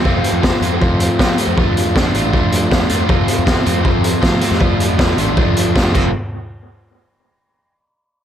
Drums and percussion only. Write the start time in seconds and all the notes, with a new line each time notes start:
0.05 kick
0.24 closed hi-hat
0.43 kick, snare
0.62 closed hi-hat
0.82 kick
1.00 closed hi-hat
1.19 kick, snare
1.38 closed hi-hat
1.58 kick
1.77 closed hi-hat
1.96 kick, snare
2.14 closed hi-hat
2.33 kick
2.52 closed hi-hat
2.72 kick, snare
2.89 closed hi-hat
3.09 kick
3.28 closed hi-hat
3.47 kick, snare
3.66 closed hi-hat
3.85 kick
4.04 closed hi-hat
4.23 kick, snare
4.41 snare, closed hi-hat
4.52 snare
4.61 kick
4.80 closed hi-hat
4.99 kick, snare
5.18 closed hi-hat
5.37 kick
5.57 closed hi-hat
5.76 kick, snare
5.95 kick, crash